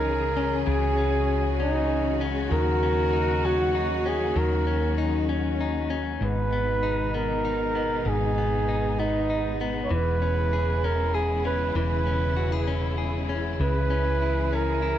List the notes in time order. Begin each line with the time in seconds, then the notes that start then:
Already playing: C#2 C#3 E3 G#3 C#4 D#4 G#4 A#4
0.37 C#4
0.67 C#2 C#3 F#4 G#4
0.98 C#4
1.60 C#4 D#4
2.21 C#4
2.51 D#2 D#3 F#3 A#3 D#4 F#4 A#4
2.83 C#4
3.13 D#4
3.45 C#4 F#4
3.75 D#4
4.06 C#4 G#4
4.36 D#2 D#3 C#4 A#4
4.67 C#4
4.97 D#4
5.29 C#4
5.61 D#4
5.90 C#4 D#4
6.21 G#1 G#2 B2 D#3 G#3 B3 D#4 B4
6.53 B3
6.83 D#4
7.14 B3 A#4
7.45 D#4
7.75 B3
8.06 G#1 G#2 G#4
8.38 B3
8.69 D#4
8.99 B3 D#4
9.30 D#4
9.61 B3
9.84 C#5
9.89 E1 C#3 E3 E4 B4
10.22 C#4
10.53 G#4
10.84 C#4 A#4
11.14 G#4
11.45 C#4 B4
11.75 E1 E3 B4
12.07 C#4
12.37 F#4
12.52 G#4
12.67 C#4
12.98 G#4
13.29 C#4
13.59 C#2 C#3 E3 E4 G#4 B4
13.90 C#4
14.22 E4
14.53 C#4 A#4
14.82 E4